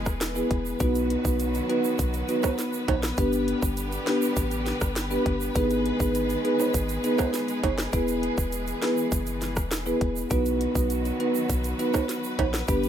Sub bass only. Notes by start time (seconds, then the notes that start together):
0.06 E1
0.51 E1
0.80 B1
1.25 B1
1.99 B1
2.88 A#1
3.18 G1
3.62 G1
4.37 A1
4.82 G1
5.26 G1
5.56 G#1
6.00 G#1
6.74 G#1
7.64 F#1
7.93 E1
8.38 E1
9.12 F#1
9.57 E1
10.01 E1
10.31 B1
10.75 B1
11.49 B1
12.39 A#1
12.68 G1